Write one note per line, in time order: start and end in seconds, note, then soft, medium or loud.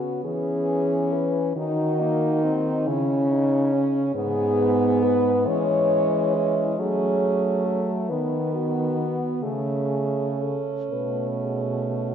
0.00 1.26 B3 medium
0.00 0.24 F#4 medium
0.24 1.53 E3 medium
0.24 1.52 C#4 medium
0.24 1.15 G#4 loud
1.14 1.56 B4 medium
1.56 2.89 D#3 medium
1.56 2.02 D#4 medium
1.56 2.90 D#4 medium
1.56 2.85 F#4 loud
2.00 2.45 A#3 medium
2.44 2.88 C4 medium
2.87 4.15 C#3 medium
2.87 4.15 C#4 medium
2.87 3.32 E4 medium
3.31 3.74 D#4 medium
3.73 4.15 C#4 medium
4.15 5.49 G#2 medium
4.15 5.48 B3 medium
4.15 5.49 B3 medium
4.15 5.05 G#4 loud
5.03 5.48 B4 loud
5.47 6.81 E3 medium
5.47 6.81 G#3 medium
5.47 6.79 C#4 medium
5.47 6.36 C#5 loud
6.35 6.78 E4 medium
6.79 8.12 F#3 medium
6.79 8.11 A3 medium
6.79 7.81 C#4 medium
6.79 7.67 G#4 loud
7.65 8.11 A4 medium
8.09 9.26 D#3 medium
8.09 9.44 B3 medium
8.09 9.39 B3 medium
8.09 8.55 B4 medium
8.54 9.44 F#4 medium
9.43 10.58 C#3 medium
9.43 10.60 A3 medium
9.43 12.15 C#4 medium
9.43 10.43 G#4 medium
10.42 10.94 A4 medium
10.91 12.15 B2 medium
10.91 12.15 A3 soft
10.91 11.27 B4 medium
11.42 11.95 G#4 medium
11.94 12.15 F#4 soft